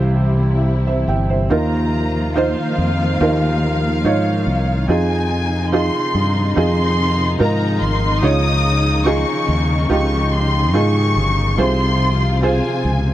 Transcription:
Already playing: C2 C3 E3 G3 E4 G4 C5 F5
0.87 C5 E5
1.08 G1 E5 G5
1.30 C5 E5
1.50 D#2 D#3 F3 A#3 D#4 F4 A#4 A#5
2.35 D#4 F4 C5 F5
2.78 F2
3.20 D#2 D#4 F4 A#4
4.04 G#2 D#4 F4 C#5
4.47 C2
4.88 F2 C3 D#3 F3 D#4 F4 G#4 G#5
5.72 D#4 F4 G#4 C6
6.15 G2
6.56 F2 D#4 F4 G#4 C6
7.39 G#2 D#4 F4 A#4 A#5
7.81 G#1 C6
8.22 C#2 C#3 D#4 F4 C#5 D#6
9.06 D#4 F4 G#4 C#6
9.48 D#2
9.89 C#2 D#4 F4 G4 C#6
10.33 C6
10.74 G#2 D#4 F4 G#4 C#6
11.16 G1
11.58 C2 C3 F4 G#4 C5 C6
12.42 F4 G#4 C5 G#5
12.85 C#2

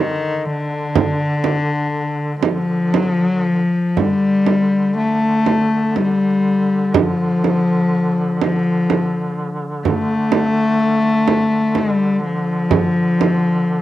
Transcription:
Already playing: D3 D#3
0.46 D3
0.95 frame drum
1.44 frame drum
2.42 F3, frame drum
2.94 F#3, frame drum
3.10 F3
3.26 F#3
3.40 F3
3.95 D3 G3, frame drum
4.46 frame drum
4.98 A3
5.46 frame drum
5.96 G3, frame drum
6.94 F3, frame drum
7.44 frame drum
8.41 F3, frame drum
8.90 frame drum
9.85 A3, frame drum
10.32 frame drum
11.28 frame drum
11.75 G3, frame drum
12.25 F3
12.71 frame drum
13.21 frame drum

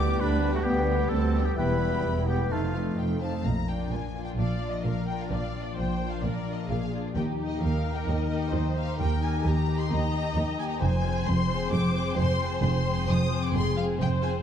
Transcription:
Already playing: D2 D3 G3 B3 G4 B4 D5 G5 D6
0.04 F#4
0.18 D2 D4 G4 B4 B5
0.35 B4
0.42 B3 G4 G5
0.50 G4
0.54 A3 F#4 F#5
0.64 D2 B3 D4 G4 G5
0.81 G4
0.88 B3 G4 G5
1.09 D2 C4 G4 A4 A5
1.27 B4
1.34 B3 G4 G5
1.43 B3 G4 G5
1.56 E1 E2 E3 B3 E4 G4 B4 G5 B5
1.72 G4
1.80 B3 G4 G5
1.88 F#4
2.03 E1 E2 G4
2.19 B4
2.26 B3 G4 G5
2.35 G4
2.50 F1 F2 F3 A3 D#4 F4 F5 A5
2.66 D#5
2.73 A3 D#4 F5
2.81 D5
2.97 F1 F2 A4 D#5 G5
3.13 A4
3.20 A3 D#4 C5 F5 A5
3.29 D#5
3.45 A#1 A#2 A#5
3.68 A#3 D4 F4 G5
3.91 A#1 A#2 D5 G#5
4.15 A#3 D4 F4
4.24 G5
4.37 A#1 A#2 F3 D5 F5
4.61 A#3 D4 F4
4.71 D#5
4.84 A#1 A#2 A#4 D5 F5
5.07 A#3 D4 F4 G5
5.21 F5
5.30 A#1 A#2 D5 F5
5.53 F3 D4 F4
5.63 D5
5.76 A#1 A#2 C5 D5 G5
6.00 A#3 D4 F4
6.11 F5
6.23 A#1 A#2 F3 A#4 D5
6.47 A#3 D4 F4
6.55 D#5
6.69 A#1 A#2 G#4 D5 F5
6.92 A#3 D4 F4
7.14 D#2 D#3 D#4 G4 G5
7.38 A#3 D#4 G4
7.46 D#5
7.60 D#2 A#4 D#5 F5
7.83 A#3 D#4 G4
7.93 G5
8.07 D#2 D#4 D#5
8.29 A#3 D#4 G4
8.52 D#2 C5 D#5
8.75 A#3 D#4 G4 F5
8.98 D#2 D#3 A#4 G5
9.21 D#4 G4 G#5
9.44 D#2 G4 D#5 A#5
9.67 A#3 D#4 G4
9.80 C6
9.90 D#2 D#4 D#5 A#5
10.12 A#3 D#4 G4
10.35 D#2 D#5
10.57 A#3 D#4 G4 G#5
10.69 A#5
10.80 F1 F2 F3 C5 G#5
11.03 C4 F4 G#4
11.26 F1 F2 G#4 C6
11.48 C4 F4 G#4
11.71 F1 F2 G#3 D6
11.94 C4 F4 G#4
12.16 F1 F2 G#4 C6
12.38 C4 F4 G#4
12.61 F1 F2 F3 C6
12.84 G#3 C4 G#4
13.07 F1 F2 G#4 D#6
13.30 C4 F4 G#4
13.43 D6
13.52 F1 F2 G#3 G#4 C6
13.75 C4 F4 G#4 F5
13.98 F1 F2 G#4 C5 G5
14.22 C4 F4 G#4 G#5

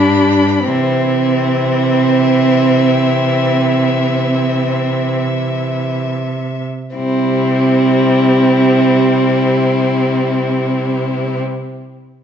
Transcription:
Already playing: G2 G3 D4 B5
0.66 C3 E3 C4 E5
6.96 C3 G3 C4 E4

